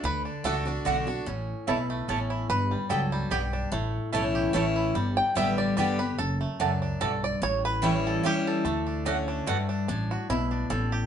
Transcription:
0.03 D2 D3 B4
0.25 D4
0.44 C#2 D3 A3 D4 F#4 A4 D5 F#5
0.65 D4 F#4
0.85 B1 D3 A3 D4 F#4 D5 F#5
1.07 D4 F#4
1.26 A1 A2 C#4
1.67 B1 B2 A3 E4 C#5 A5
1.90 A3
2.08 A1 A2 A3 C#4 E4 C#5 A5
2.30 E4
2.49 G1 G2 B4
2.71 G3
2.89 C#2 F#3 B3 G4 A4 D5 G5
3.12 G3
3.30 B1 G2 B3 G4 D5 G5
3.53 D4
3.72 A1 A2 A3
4.13 B1 E3 A3 C#4 E4 C#5 A5
4.35 G4
4.53 A1 E3 A3 C#4 E4 C#5 A5
4.76 E4
4.95 G1 G3
5.17 G5
5.35 A1 D3 G3 B3 G4 D5 E5 G5
5.58 D5
5.77 G1 D3 G3 B3 G4 D5 G5
5.99 B3 G4 B4
6.18 F#1 F#2 A4
6.41 A3
6.60 C#2 F#2 A3 D4 F#4 D5 A5
6.82 D4
7.00 B1 G2 A3 F#4 A4 D5 A5
7.24 D5
7.42 A1 A2 C#5
7.65 B4
7.82 E3 G3 A3 C#4 E4 C#5 G5
8.07 A4
8.23 E3 G3 A3 C#4 E4 G4 C#5 G5
8.47 A4
8.65 D2 D3 A3
8.87 D4
9.05 A3 C#4 F#4 D5 F#5
9.28 D4
9.46 G2 A3 F#4 D5 F#5
9.69 D4
9.88 A1 A2 D4
10.11 F#4
10.30 B1 B2 E4
10.51 D4
10.70 A1 A2 A4
10.92 G4

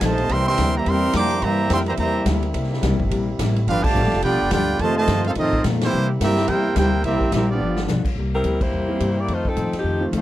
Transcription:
Already playing: C3 F3 A3 D#4
0.01 A#1 C3 D#3 F3 A3 C4 D#4 A4, kick, snare, hi-hat pedal, ride
0.06 F4 C5 D#5 A5
0.18 ride
0.28 C2 C3 E3 G3 A#3 C4 E4 E5, kick, ride
0.32 A#3 E4 A#4 G5 C6
0.47 E3 G3 C4 A#4 E5 G5 C6
0.58 D2 C3 G3 A#3 E4, kick, snare, hi-hat pedal, ride
0.76 E3 G3 A#3 G4 C5 E5 A#5
0.86 E2 C3 E3 G3 A#3 C4 E4 A#4 E5 G5 C6, kick, ride
1.13 F2 C3 G3 A#3 D4 E4 C5 G5 A#5 D6, kick, snare, hi-hat pedal, ride
1.31 ride
1.41 G2 C3 E3 G3 A#3 G4 C5 E5 A#5, kick, ride
1.46 E4
1.69 F2 C3 E3 G3 A#3 C4 E4, kick, snare, hi-hat pedal, ride
1.74 A#4 E5 G5 C6
1.86 E3 G3 A#3 G4 C5 E5 A#5, ride
1.97 E2 C3 E3 G3 A#3 E4 G4 C5 E5 A#5, kick, ride
2.26 D2 C3 G3 A#3 E4, kick, snare, hi-hat pedal, ride
2.43 ride
2.53 C2 C3 G3 A#3 E4, kick, ride
2.64 snare
2.73 snare
2.82 C2 C3 G3 A#3 E4, kick, snare, hi-hat pedal, ride
2.93 A#1
3.00 G1, kick
3.09 A#1 C3 G3 A#3, kick, ride
3.13 E4
3.39 A1 C3 G3 A#3 E4, kick, snare, hi-hat pedal, ride
3.56 ride
3.66 G1 G2 D3 F3 B3 D4 F4 G4 B4 F5, kick, ride
3.82 D3 F3 A3 G4 D5 F5 A5, kick, crash
3.95 A1 G2 F3 B3 D4, hi-hat pedal
4.04 G1, snare
4.12 F1, snare, ride
4.21 B1 G2 F3 B3 D4 F4 G4 B4 D5 G5, kick, ride
4.33 G1
4.42 F1
4.51 D2 G2 F3 B3 D4 F4 G4 B4 D5 G5, kick, snare, hi-hat pedal, ride
4.77 F2 C3 D#3 A3 C4, kick, ride
4.82 D#3 A3 C4 F4 C5 D#5 A5
4.97 C3 D#3 A3 F4 C5 D#5 A5
5.08 F2 G2 D#3 A3 C4, kick, snare, hi-hat pedal, ride
5.24 A3 C4 D#4 F4 A4 C5 F5, ride
5.35 F2 A2 D#3 A3 C4 D#4 A4, kick, ride
5.39 C4 F4 D#5
5.53 kick
5.64 F2 A#2 D#3 A3 C4, kick, snare, hi-hat pedal, ride
5.81 E3 G3 A#3 C4 E4 G4 C5, snare, ride
5.92 C3 G3 A#3 E4
6.20 G2 C3 G3 A#3 C4 E4 G4 A#4 E5, kick, snare, hi-hat pedal, ride
6.37 snare, ride
6.48 E2 C3 G3 A#3 E4 G4 A#4 C5 G5, kick, ride
6.53 E4
6.75 D2 C3 G3 A#3 E4 G4 A#4 C5 G5, kick, snare, hi-hat pedal, ride
7.04 C2 C3 G3 A#3 C4 E4 G4 A#4 E5, kick, ride
7.09 E4
7.14 A#1
7.21 G1, kick
7.32 A#1 C3 G3 A#3 C4 E4 G4 A#4 E5, kick, snare, hi-hat pedal, ride
7.51 F3 B3 D4 F4 G4 D5
7.59 G1 G2 D3 F3 B3 D4 F4
7.76 snare
7.87 B1 G2 F3 B3 D4, snare, hi-hat pedal
8.05 muted upright bass stroke, kick, crash
8.16 C2 C3 G3 A#3 E4, kick
8.35 G3 C4 E4 A#4
8.43 D2 C3 G3 A#3 E4, kick, hi-hat pedal, ride
8.61 A#3 E4 G4 C5, kick, crash
8.71 E2 C3 G3 A#3
8.75 E4
8.88 E3 G3 A#3 C4 G4
8.99 G2 C3 G3 A#3 E4, kick, hi-hat pedal, ride
9.20 A#3 E4 G4 D5
9.26 F2 D#3 A3 C4, kick, ride
9.32 A3 D#4 F4 C5
9.45 F3 D#4 A4, kick
9.49 C4
9.54 F2 A2 D#3 A3 C4, kick, hi-hat pedal, ride
9.73 muted upright bass stroke, snare, ride
9.78 F2 F3 C4 D#4 G4
9.83 F2 D#3 A3 C4, kick
10.00 D#3 F3 A3 C4 F4
10.11 D2 F2 D#3 A3 C4, kick, hi-hat pedal, ride
10.17 A3 C4 D#4 F4

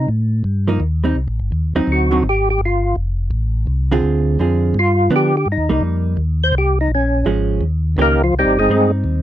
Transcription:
0.08 A2
0.44 G2
0.68 F3 A#3 D#4
0.80 D#2
1.04 G3 C4 D#4
1.15 C2
1.28 A1
1.39 G1
1.52 D#2
1.75 D#2 F#3 C4 D#4
1.87 D2
1.92 F#4
2.11 D3 F#3 C4 D#4
2.23 G#1
2.29 G4
2.50 G4
2.59 G1
2.65 F4
2.96 F1
3.31 A1
3.67 C2
3.92 D3 C4 F4 G#4
4.03 D2
4.39 F2 D3 C4 F4 G#4
4.74 G2
4.79 F4
5.10 D3 F3 B3 D4
5.16 G4
5.37 G4
5.46 G2
5.52 D#4
5.58 D#2
5.69 C2 G3 A#3 D#4
5.80 F2
6.17 D#2
6.44 C5
6.52 C2
6.58 G4
6.81 D#4
6.88 A#1
6.95 C#4
7.25 G#1 F3 G#3 C#4
7.61 D#2
7.97 C#2 D#3 A#3 C#4 G4
8.01 A#3 D#4 G4 A#4
8.23 F3 F4
8.33 C2
8.39 G3 C4 D#4 G4
8.45 G#1
8.57 G1 G#3 C4 D#4 G#4
8.69 G2 G3 C4 D#4
9.04 D#2

